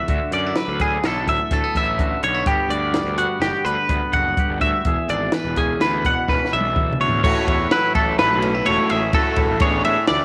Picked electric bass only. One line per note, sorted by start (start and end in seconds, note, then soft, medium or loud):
0.08 0.18 D2 medium
0.31 0.51 F#2 medium
0.68 0.97 D2 medium
1.04 1.27 B1 medium
1.27 1.37 D2 medium
1.51 1.61 D2 medium
1.75 2.14 A1 medium
2.23 2.42 B1 medium
2.46 2.56 G1 loud
2.69 2.98 D2 medium
3.04 3.24 D2 medium
3.40 3.51 F#1 medium
3.65 3.75 D2 medium
3.89 3.99 D2 medium
4.13 4.33 F#1 medium
4.49 4.59 G1 medium
4.61 4.71 D2 medium
4.85 4.95 E1 medium
5.08 5.28 G#1 medium
5.45 5.73 E1 medium
5.80 6.06 D2 medium
6.04 6.14 E1 medium
6.29 6.38 E1 medium
6.53 6.91 B1 medium
7.00 7.19 D2 medium
7.24 7.33 A1 loud
7.47 7.66 E2 loud
7.95 8.14 A1 medium
8.20 8.29 A1 medium
8.33 8.60 B1 medium
8.68 8.77 E1 medium
8.91 9.10 A1 medium
9.37 9.51 E1 medium
9.51 9.60 A1 loud
9.61 9.80 A1 loud
9.87 9.95 A2 medium
10.10 10.19 D2 loud